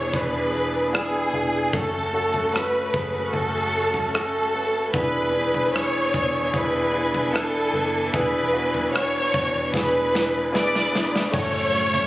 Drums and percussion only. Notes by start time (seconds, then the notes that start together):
0.14 kick, floor tom
0.95 cross-stick
1.73 kick, floor tom
2.34 floor tom
2.56 cross-stick
2.94 kick, floor tom
3.33 floor tom
3.94 floor tom
4.15 cross-stick
4.94 kick, floor tom
5.54 floor tom
5.76 cross-stick
6.14 kick, floor tom
6.54 kick, floor tom
7.14 floor tom
7.36 cross-stick
8.14 kick, floor tom
8.74 floor tom
8.96 cross-stick
9.34 kick, floor tom
9.74 kick, snare
10.15 snare
10.55 snare
10.75 snare
10.95 snare
11.16 snare
11.34 kick, floor tom, crash, tambourine
11.74 tambourine
11.94 floor tom